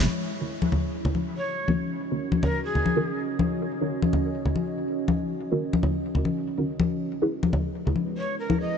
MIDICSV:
0, 0, Header, 1, 5, 480
1, 0, Start_track
1, 0, Tempo, 425532
1, 97, Time_signature, 4, 2, 24, 8
1, 9903, End_track
2, 0, Start_track
2, 0, Title_t, "Shakuhachi"
2, 0, Program_c, 0, 77
2, 1537, Note_on_c, 0, 73, 84
2, 1903, Note_off_c, 0, 73, 0
2, 2737, Note_on_c, 0, 70, 84
2, 2954, Note_off_c, 0, 70, 0
2, 2975, Note_on_c, 0, 68, 88
2, 3650, Note_off_c, 0, 68, 0
2, 9216, Note_on_c, 0, 73, 87
2, 9449, Note_off_c, 0, 73, 0
2, 9456, Note_on_c, 0, 70, 89
2, 9674, Note_off_c, 0, 70, 0
2, 9696, Note_on_c, 0, 75, 89
2, 9903, Note_off_c, 0, 75, 0
2, 9903, End_track
3, 0, Start_track
3, 0, Title_t, "Synth stab"
3, 0, Program_c, 1, 62
3, 462, Note_on_c, 1, 51, 75
3, 462, Note_on_c, 1, 61, 71
3, 462, Note_on_c, 1, 66, 70
3, 462, Note_on_c, 1, 70, 87
3, 619, Note_off_c, 1, 51, 0
3, 619, Note_off_c, 1, 61, 0
3, 619, Note_off_c, 1, 66, 0
3, 619, Note_off_c, 1, 70, 0
3, 1902, Note_on_c, 1, 51, 70
3, 1902, Note_on_c, 1, 61, 65
3, 1902, Note_on_c, 1, 66, 66
3, 1902, Note_on_c, 1, 70, 78
3, 1998, Note_off_c, 1, 51, 0
3, 1998, Note_off_c, 1, 61, 0
3, 1998, Note_off_c, 1, 66, 0
3, 1998, Note_off_c, 1, 70, 0
3, 2383, Note_on_c, 1, 51, 86
3, 2383, Note_on_c, 1, 61, 82
3, 2383, Note_on_c, 1, 66, 79
3, 2383, Note_on_c, 1, 70, 99
3, 2539, Note_off_c, 1, 51, 0
3, 2539, Note_off_c, 1, 61, 0
3, 2539, Note_off_c, 1, 66, 0
3, 2540, Note_off_c, 1, 70, 0
3, 3342, Note_on_c, 1, 61, 70
3, 3342, Note_on_c, 1, 66, 74
3, 3343, Note_on_c, 1, 51, 80
3, 3343, Note_on_c, 1, 70, 87
3, 3438, Note_off_c, 1, 51, 0
3, 3438, Note_off_c, 1, 61, 0
3, 3438, Note_off_c, 1, 66, 0
3, 3438, Note_off_c, 1, 70, 0
3, 4302, Note_on_c, 1, 51, 80
3, 4302, Note_on_c, 1, 61, 72
3, 4302, Note_on_c, 1, 66, 71
3, 4302, Note_on_c, 1, 70, 89
3, 4459, Note_off_c, 1, 51, 0
3, 4459, Note_off_c, 1, 61, 0
3, 4459, Note_off_c, 1, 66, 0
3, 4459, Note_off_c, 1, 70, 0
3, 6223, Note_on_c, 1, 51, 85
3, 6223, Note_on_c, 1, 61, 82
3, 6223, Note_on_c, 1, 66, 80
3, 6223, Note_on_c, 1, 70, 96
3, 6380, Note_off_c, 1, 51, 0
3, 6380, Note_off_c, 1, 61, 0
3, 6380, Note_off_c, 1, 66, 0
3, 6380, Note_off_c, 1, 70, 0
3, 7422, Note_on_c, 1, 51, 78
3, 7422, Note_on_c, 1, 61, 68
3, 7423, Note_on_c, 1, 66, 69
3, 7423, Note_on_c, 1, 70, 84
3, 7518, Note_off_c, 1, 51, 0
3, 7518, Note_off_c, 1, 61, 0
3, 7518, Note_off_c, 1, 66, 0
3, 7518, Note_off_c, 1, 70, 0
3, 8142, Note_on_c, 1, 64, 79
3, 8142, Note_on_c, 1, 68, 71
3, 8142, Note_on_c, 1, 71, 87
3, 8299, Note_off_c, 1, 64, 0
3, 8299, Note_off_c, 1, 68, 0
3, 8299, Note_off_c, 1, 71, 0
3, 9582, Note_on_c, 1, 64, 69
3, 9582, Note_on_c, 1, 68, 64
3, 9582, Note_on_c, 1, 71, 75
3, 9678, Note_off_c, 1, 64, 0
3, 9678, Note_off_c, 1, 68, 0
3, 9678, Note_off_c, 1, 71, 0
3, 9903, End_track
4, 0, Start_track
4, 0, Title_t, "Ambient pad"
4, 0, Program_c, 2, 92
4, 97, Note_on_c, 2, 61, 75
4, 97, Note_on_c, 2, 66, 67
4, 97, Note_on_c, 2, 75, 83
4, 7732, Note_off_c, 2, 61, 0
4, 7732, Note_off_c, 2, 66, 0
4, 7732, Note_off_c, 2, 75, 0
4, 7776, Note_on_c, 2, 56, 75
4, 7776, Note_on_c, 2, 71, 82
4, 7777, Note_on_c, 2, 64, 69
4, 9903, Note_off_c, 2, 56, 0
4, 9903, Note_off_c, 2, 64, 0
4, 9903, Note_off_c, 2, 71, 0
4, 9903, End_track
5, 0, Start_track
5, 0, Title_t, "Drums"
5, 698, Note_on_c, 9, 63, 89
5, 811, Note_off_c, 9, 63, 0
5, 815, Note_on_c, 9, 64, 96
5, 927, Note_off_c, 9, 64, 0
5, 1183, Note_on_c, 9, 64, 82
5, 1294, Note_on_c, 9, 63, 61
5, 1296, Note_off_c, 9, 64, 0
5, 1407, Note_off_c, 9, 63, 0
5, 1895, Note_on_c, 9, 63, 79
5, 2008, Note_off_c, 9, 63, 0
5, 2615, Note_on_c, 9, 63, 85
5, 2728, Note_off_c, 9, 63, 0
5, 2740, Note_on_c, 9, 64, 89
5, 2852, Note_off_c, 9, 64, 0
5, 3105, Note_on_c, 9, 64, 69
5, 3218, Note_off_c, 9, 64, 0
5, 3222, Note_on_c, 9, 63, 67
5, 3335, Note_off_c, 9, 63, 0
5, 3827, Note_on_c, 9, 63, 89
5, 3940, Note_off_c, 9, 63, 0
5, 4540, Note_on_c, 9, 63, 89
5, 4653, Note_off_c, 9, 63, 0
5, 4660, Note_on_c, 9, 64, 87
5, 4773, Note_off_c, 9, 64, 0
5, 5025, Note_on_c, 9, 64, 73
5, 5138, Note_off_c, 9, 64, 0
5, 5138, Note_on_c, 9, 63, 59
5, 5251, Note_off_c, 9, 63, 0
5, 5731, Note_on_c, 9, 63, 97
5, 5844, Note_off_c, 9, 63, 0
5, 6467, Note_on_c, 9, 63, 88
5, 6577, Note_on_c, 9, 64, 89
5, 6580, Note_off_c, 9, 63, 0
5, 6689, Note_off_c, 9, 64, 0
5, 6936, Note_on_c, 9, 64, 76
5, 7049, Note_off_c, 9, 64, 0
5, 7051, Note_on_c, 9, 63, 63
5, 7164, Note_off_c, 9, 63, 0
5, 7666, Note_on_c, 9, 63, 92
5, 7778, Note_off_c, 9, 63, 0
5, 8380, Note_on_c, 9, 63, 89
5, 8493, Note_off_c, 9, 63, 0
5, 8494, Note_on_c, 9, 64, 83
5, 8606, Note_off_c, 9, 64, 0
5, 8876, Note_on_c, 9, 64, 73
5, 8975, Note_on_c, 9, 63, 57
5, 8989, Note_off_c, 9, 64, 0
5, 9088, Note_off_c, 9, 63, 0
5, 9586, Note_on_c, 9, 63, 80
5, 9699, Note_off_c, 9, 63, 0
5, 9903, End_track
0, 0, End_of_file